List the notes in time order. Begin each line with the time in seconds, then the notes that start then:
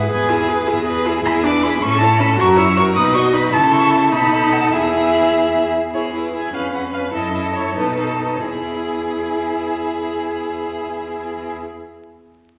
Already playing: B4
0.10 E2 G#4 B4 G#5
0.29 E4 G#4
0.49 G#4 B4
0.67 E2 E4 G#4
0.87 G#4 B4
1.06 E4 G#4
1.25 E2 E4 G#4 B5
1.44 D4 B4 D6
1.63 E4 G#4 B5
1.82 A2 C#4 A4 C#6
2.00 E4 C#5 A5
2.20 C#4 A4 B5
2.38 F#2 F#4 A#4 C#6
2.57 E4 C#5 E6
2.76 F#4 A#4 C#6
2.96 B2 D#4 B4 D#6
3.14 F#4 D#5 C#6
3.34 D#4 B4 B5
3.53 C#3 E4 A4 A5
3.72 C#6
3.92 A5
4.11 B2 D#4 A4 B5
4.52 F#5
4.72 E2 E4 G#4 E5
5.93 E2 E4 G#4 C#5
6.14 E4 G#4 B4
6.33 E4 G#4 G#5
6.53 F2 C#4 B4 F5
6.73 C#4 B4 F#5
6.93 C#4 B4 F5
7.13 F#2 E4 A4 D#5
7.34 E4 A4
7.54 E4 A4 C#5
7.76 B2 D#4 A4 B4
7.98 D#4 A4
8.21 D#4 A4 B4
8.34 C#5
8.44 E2 E4 G#4